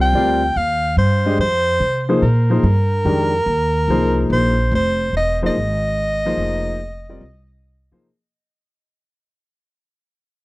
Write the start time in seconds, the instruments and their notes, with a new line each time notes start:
Already playing: upright bass C2, grand piano G3 C4 F4 A#4 D5
0.01 soprano saxophone G5
0.13 upright bass D2, grand piano G3 C4 F4 A#4 D5
0.56 upright bass D#2, soprano saxophone F5
0.97 upright bass G2, soprano saxophone C5
1.26 grand piano G#3 D4 G4 C5 D#5
1.38 upright bass F2, soprano saxophone C5
1.80 upright bass C3
2.09 grand piano F3 A#3 D#4 G#4 C5
2.22 upright bass A#2, soprano saxophone A#4
2.50 grand piano F3 A#3 D#4 G#4 C5
2.63 upright bass G2
3.05 upright bass F2, grand piano D#3 G#3 D4 G4 A#4
3.46 upright bass D#2
3.88 upright bass C2, grand piano F3 A#3 D#4 G#4 C5
4.30 upright bass A#1, soprano saxophone C5
4.72 upright bass F1, soprano saxophone C5
5.13 upright bass E1, soprano saxophone D#5
5.42 grand piano F3 A#3 D#4 G#4 C5
5.46 soprano saxophone D#5
5.55 upright bass G#1
6.26 grand piano F3 A#3 D#4 G#4 C5
6.37 upright bass F1
7.09 grand piano G3 C4 F4 A#4 D5
7.21 upright bass C2
7.91 upright bass C3, grand piano F3 A#3 D#4 G#4 C5